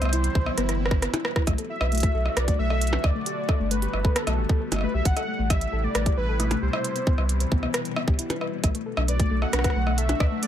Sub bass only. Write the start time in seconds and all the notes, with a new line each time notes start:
0.02 C2
0.35 C2
0.58 G1
1.47 B1
1.81 B1
2.14 B1
2.37 B1
2.59 B1
3.04 D2
3.60 G1
3.93 G1
4.27 B1
4.38 G1
4.72 G1
4.94 B1
5.05 A1
5.39 A1
5.73 A1
5.95 A1
6.17 A1
6.62 C2
7.18 C2
7.52 C2
8.08 C2
8.64 B1
8.97 B1
9.31 B1
9.53 B1
9.76 B1
10.20 D2